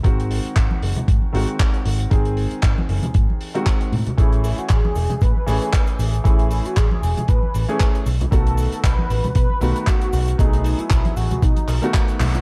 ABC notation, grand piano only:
X:1
M:4/4
L:1/16
Q:"Swing 16ths" 1/4=116
K:Bmix
V:1 name="Grand piano"
[D,G,^B,F]8- [D,G,B,F]2 [D,G,B,F]6 | [D,G,^B,G]8- [D,G,B,G]3 [D,G,B,F]3 z2 | [E,A,CG]8- [E,A,CG]2 [E,A,CG]6 | [E,A,CG]8- [E,A,CG]3 [E,A,CG]3 z2 |
[D,A,B,F]8- [D,A,B,F]2 [D,A,B,F]6 | [F,A,B,G]8- [F,A,B,G]3 [D,A,B,F]4- [D,A,B,F] |]